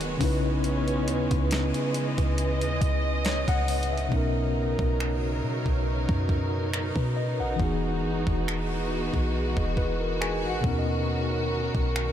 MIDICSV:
0, 0, Header, 1, 5, 480
1, 0, Start_track
1, 0, Key_signature, 5, "major"
1, 0, Tempo, 869565
1, 353, Time_signature, 4, 2, 24, 8
1, 6692, End_track
2, 0, Start_track
2, 0, Title_t, "Tine electric piano"
2, 0, Program_c, 0, 4
2, 0, Control_c, 0, 64, 127
2, 0, Note_on_c, 0, 51, 78
2, 0, Note_on_c, 0, 63, 66
2, 0, Note_on_c, 0, 66, 69
2, 0, Note_on_c, 0, 70, 71
2, 0, Note_on_c, 0, 71, 80
2, 83, Note_off_c, 0, 51, 0
2, 88, Note_off_c, 0, 63, 0
2, 93, Note_off_c, 0, 66, 0
2, 95, Note_on_c, 0, 49, 74
2, 99, Note_off_c, 0, 70, 0
2, 104, Note_off_c, 0, 71, 0
2, 106, Note_on_c, 0, 61, 72
2, 116, Note_on_c, 0, 63, 70
2, 121, Control_c, 0, 64, 0
2, 128, Note_on_c, 0, 64, 70
2, 138, Note_on_c, 0, 71, 86
2, 210, Control_c, 0, 64, 127
2, 1796, Note_on_c, 0, 73, 68
2, 1918, Note_off_c, 0, 73, 0
2, 1925, Note_on_c, 0, 78, 80
2, 2002, Note_off_c, 0, 49, 0
2, 2007, Note_off_c, 0, 61, 0
2, 2013, Note_off_c, 0, 63, 0
2, 2018, Note_off_c, 0, 64, 0
2, 2023, Note_off_c, 0, 71, 0
2, 2152, Note_off_c, 0, 78, 0
2, 2166, Note_on_c, 0, 76, 64
2, 2255, Note_on_c, 0, 47, 66
2, 2266, Note_on_c, 0, 59, 62
2, 2277, Note_on_c, 0, 61, 65
2, 2279, Control_c, 0, 64, 0
2, 2287, Note_on_c, 0, 63, 63
2, 2298, Note_on_c, 0, 70, 76
2, 2367, Control_c, 0, 64, 127
2, 2392, Note_off_c, 0, 76, 0
2, 3464, Note_off_c, 0, 70, 0
2, 3845, Note_on_c, 0, 71, 66
2, 3949, Note_off_c, 0, 71, 0
2, 3955, Note_on_c, 0, 75, 68
2, 4077, Note_off_c, 0, 75, 0
2, 4085, Note_on_c, 0, 78, 63
2, 4162, Note_off_c, 0, 47, 0
2, 4167, Note_off_c, 0, 59, 0
2, 4173, Note_off_c, 0, 61, 0
2, 4173, Note_on_c, 0, 52, 69
2, 4178, Note_off_c, 0, 63, 0
2, 4184, Note_on_c, 0, 59, 62
2, 4195, Note_on_c, 0, 63, 66
2, 4201, Control_c, 0, 64, 0
2, 4206, Note_on_c, 0, 66, 64
2, 4217, Note_on_c, 0, 68, 82
2, 4287, Control_c, 0, 64, 127
2, 4312, Note_off_c, 0, 78, 0
2, 5140, Note_off_c, 0, 66, 0
2, 5146, Note_off_c, 0, 68, 0
2, 5285, Note_on_c, 0, 75, 63
2, 5389, Note_off_c, 0, 75, 0
2, 5395, Note_on_c, 0, 71, 66
2, 5517, Note_off_c, 0, 71, 0
2, 5523, Note_on_c, 0, 70, 67
2, 5628, Note_off_c, 0, 70, 0
2, 5635, Note_on_c, 0, 68, 67
2, 5635, Note_on_c, 0, 80, 72
2, 5757, Note_off_c, 0, 68, 0
2, 5764, Note_on_c, 0, 66, 65
2, 5783, Note_off_c, 0, 80, 0
2, 5794, Note_on_c, 0, 78, 75
2, 5841, Note_off_c, 0, 52, 0
2, 5847, Note_off_c, 0, 59, 0
2, 5852, Note_off_c, 0, 63, 0
2, 5854, Note_on_c, 0, 47, 74
2, 5864, Note_on_c, 0, 59, 67
2, 5875, Note_on_c, 0, 61, 67
2, 5879, Control_c, 0, 64, 0
2, 5886, Note_on_c, 0, 63, 66
2, 5897, Note_on_c, 0, 70, 82
2, 5942, Note_off_c, 0, 78, 0
2, 5955, Note_on_c, 0, 75, 68
2, 5979, Control_c, 0, 64, 127
2, 5991, Note_off_c, 0, 66, 0
2, 6103, Note_off_c, 0, 75, 0
2, 6692, Note_off_c, 0, 47, 0
2, 6692, Note_off_c, 0, 59, 0
2, 6692, Note_off_c, 0, 61, 0
2, 6692, Note_off_c, 0, 63, 0
2, 6692, Note_off_c, 0, 70, 0
2, 6692, End_track
3, 0, Start_track
3, 0, Title_t, "String section"
3, 0, Program_c, 1, 48
3, 0, Note_on_c, 1, 51, 83
3, 0, Note_on_c, 1, 54, 73
3, 0, Note_on_c, 1, 56, 75
3, 0, Note_on_c, 1, 59, 77
3, 0, Note_on_c, 1, 66, 94
3, 97, Note_off_c, 1, 51, 0
3, 97, Note_off_c, 1, 54, 0
3, 97, Note_off_c, 1, 56, 0
3, 97, Note_off_c, 1, 66, 0
3, 112, Note_on_c, 1, 49, 78
3, 113, Note_on_c, 1, 52, 68
3, 113, Note_on_c, 1, 56, 71
3, 114, Note_on_c, 1, 61, 87
3, 1064, Note_off_c, 1, 61, 0
3, 1074, Note_on_c, 1, 75, 88
3, 2251, Note_off_c, 1, 49, 0
3, 2251, Note_off_c, 1, 56, 0
3, 2252, Note_off_c, 1, 52, 0
3, 2252, Note_off_c, 1, 59, 0
3, 2261, Note_off_c, 1, 75, 0
3, 2272, Note_on_c, 1, 49, 78
3, 2272, Note_on_c, 1, 70, 67
3, 2273, Note_on_c, 1, 54, 69
3, 2273, Note_on_c, 1, 59, 67
3, 2273, Note_on_c, 1, 63, 85
3, 4173, Note_off_c, 1, 49, 0
3, 4174, Note_off_c, 1, 54, 0
3, 4174, Note_off_c, 1, 70, 0
3, 4192, Note_on_c, 1, 52, 73
3, 4192, Note_on_c, 1, 56, 67
3, 4193, Note_on_c, 1, 66, 84
3, 5851, Note_off_c, 1, 63, 0
3, 5856, Note_off_c, 1, 52, 0
3, 5856, Note_off_c, 1, 56, 0
3, 5871, Note_on_c, 1, 51, 75
3, 5872, Note_on_c, 1, 61, 67
3, 5872, Note_on_c, 1, 70, 66
3, 6692, Note_off_c, 1, 51, 0
3, 6692, Note_off_c, 1, 59, 0
3, 6692, Note_off_c, 1, 61, 0
3, 6692, Note_off_c, 1, 66, 0
3, 6692, Note_off_c, 1, 70, 0
3, 6692, End_track
4, 0, Start_track
4, 0, Title_t, "808-style bass"
4, 0, Program_c, 2, 38
4, 0, Note_on_c, 2, 27, 100
4, 93, Note_off_c, 2, 27, 0
4, 115, Note_on_c, 2, 35, 108
4, 596, Note_on_c, 2, 39, 104
4, 605, Note_off_c, 2, 35, 0
4, 718, Note_off_c, 2, 39, 0
4, 726, Note_on_c, 2, 37, 101
4, 955, Note_off_c, 2, 37, 0
4, 1206, Note_on_c, 2, 37, 104
4, 1447, Note_on_c, 2, 39, 99
4, 1455, Note_off_c, 2, 37, 0
4, 1550, Note_off_c, 2, 39, 0
4, 1555, Note_on_c, 2, 37, 103
4, 1909, Note_off_c, 2, 37, 0
4, 1922, Note_on_c, 2, 37, 103
4, 2259, Note_off_c, 2, 37, 0
4, 2274, Note_on_c, 2, 35, 104
4, 2628, Note_off_c, 2, 35, 0
4, 2645, Note_on_c, 2, 35, 101
4, 2993, Note_on_c, 2, 47, 96
4, 3002, Note_off_c, 2, 35, 0
4, 3116, Note_off_c, 2, 47, 0
4, 3124, Note_on_c, 2, 35, 101
4, 3354, Note_off_c, 2, 35, 0
4, 3362, Note_on_c, 2, 42, 96
4, 3823, Note_off_c, 2, 42, 0
4, 3841, Note_on_c, 2, 47, 103
4, 4084, Note_on_c, 2, 34, 92
4, 4092, Note_off_c, 2, 47, 0
4, 4188, Note_off_c, 2, 34, 0
4, 4193, Note_on_c, 2, 28, 96
4, 4435, Note_on_c, 2, 30, 95
4, 4444, Note_off_c, 2, 28, 0
4, 4558, Note_off_c, 2, 30, 0
4, 4565, Note_on_c, 2, 28, 102
4, 5025, Note_off_c, 2, 28, 0
4, 5045, Note_on_c, 2, 35, 105
4, 5274, Note_off_c, 2, 35, 0
4, 5282, Note_on_c, 2, 28, 110
4, 5764, Note_on_c, 2, 32, 94
4, 5773, Note_off_c, 2, 28, 0
4, 5868, Note_off_c, 2, 32, 0
4, 5874, Note_on_c, 2, 39, 94
4, 6461, Note_off_c, 2, 39, 0
4, 6485, Note_on_c, 2, 35, 96
4, 6692, Note_off_c, 2, 35, 0
4, 6692, End_track
5, 0, Start_track
5, 0, Title_t, "Drums"
5, 4, Note_on_c, 9, 42, 50
5, 59, Note_off_c, 9, 42, 0
5, 114, Note_on_c, 9, 36, 108
5, 115, Note_on_c, 9, 46, 71
5, 169, Note_off_c, 9, 36, 0
5, 170, Note_off_c, 9, 46, 0
5, 354, Note_on_c, 9, 42, 55
5, 409, Note_off_c, 9, 42, 0
5, 484, Note_on_c, 9, 42, 46
5, 539, Note_off_c, 9, 42, 0
5, 595, Note_on_c, 9, 42, 78
5, 650, Note_off_c, 9, 42, 0
5, 723, Note_on_c, 9, 42, 50
5, 725, Note_on_c, 9, 36, 94
5, 778, Note_off_c, 9, 42, 0
5, 780, Note_off_c, 9, 36, 0
5, 833, Note_on_c, 9, 42, 78
5, 842, Note_on_c, 9, 38, 113
5, 888, Note_off_c, 9, 42, 0
5, 897, Note_off_c, 9, 38, 0
5, 963, Note_on_c, 9, 42, 46
5, 1018, Note_off_c, 9, 42, 0
5, 1073, Note_on_c, 9, 42, 70
5, 1129, Note_off_c, 9, 42, 0
5, 1203, Note_on_c, 9, 42, 48
5, 1204, Note_on_c, 9, 36, 89
5, 1258, Note_off_c, 9, 42, 0
5, 1259, Note_off_c, 9, 36, 0
5, 1314, Note_on_c, 9, 42, 72
5, 1369, Note_off_c, 9, 42, 0
5, 1443, Note_on_c, 9, 42, 60
5, 1498, Note_off_c, 9, 42, 0
5, 1554, Note_on_c, 9, 36, 86
5, 1554, Note_on_c, 9, 42, 67
5, 1609, Note_off_c, 9, 36, 0
5, 1610, Note_off_c, 9, 42, 0
5, 1792, Note_on_c, 9, 42, 64
5, 1799, Note_on_c, 9, 38, 114
5, 1848, Note_off_c, 9, 42, 0
5, 1854, Note_off_c, 9, 38, 0
5, 1921, Note_on_c, 9, 36, 85
5, 1922, Note_on_c, 9, 42, 49
5, 1976, Note_off_c, 9, 36, 0
5, 1978, Note_off_c, 9, 42, 0
5, 2033, Note_on_c, 9, 42, 67
5, 2033, Note_on_c, 9, 46, 72
5, 2088, Note_off_c, 9, 42, 0
5, 2088, Note_off_c, 9, 46, 0
5, 2114, Note_on_c, 9, 42, 54
5, 2169, Note_off_c, 9, 42, 0
5, 2194, Note_on_c, 9, 42, 40
5, 2249, Note_off_c, 9, 42, 0
5, 2273, Note_on_c, 9, 36, 107
5, 2328, Note_off_c, 9, 36, 0
5, 2644, Note_on_c, 9, 36, 89
5, 2699, Note_off_c, 9, 36, 0
5, 2762, Note_on_c, 9, 26, 106
5, 2817, Note_off_c, 9, 26, 0
5, 3123, Note_on_c, 9, 36, 82
5, 3179, Note_off_c, 9, 36, 0
5, 3361, Note_on_c, 9, 36, 85
5, 3416, Note_off_c, 9, 36, 0
5, 3473, Note_on_c, 9, 36, 80
5, 3528, Note_off_c, 9, 36, 0
5, 3718, Note_on_c, 9, 26, 108
5, 3773, Note_off_c, 9, 26, 0
5, 3840, Note_on_c, 9, 36, 75
5, 3895, Note_off_c, 9, 36, 0
5, 4193, Note_on_c, 9, 36, 106
5, 4248, Note_off_c, 9, 36, 0
5, 4564, Note_on_c, 9, 36, 85
5, 4619, Note_off_c, 9, 36, 0
5, 4682, Note_on_c, 9, 26, 113
5, 4737, Note_off_c, 9, 26, 0
5, 5043, Note_on_c, 9, 36, 81
5, 5099, Note_off_c, 9, 36, 0
5, 5281, Note_on_c, 9, 36, 88
5, 5337, Note_off_c, 9, 36, 0
5, 5393, Note_on_c, 9, 36, 86
5, 5448, Note_off_c, 9, 36, 0
5, 5640, Note_on_c, 9, 26, 107
5, 5695, Note_off_c, 9, 26, 0
5, 5873, Note_on_c, 9, 36, 103
5, 5928, Note_off_c, 9, 36, 0
5, 6484, Note_on_c, 9, 36, 89
5, 6539, Note_off_c, 9, 36, 0
5, 6601, Note_on_c, 9, 26, 108
5, 6656, Note_off_c, 9, 26, 0
5, 6692, End_track
0, 0, End_of_file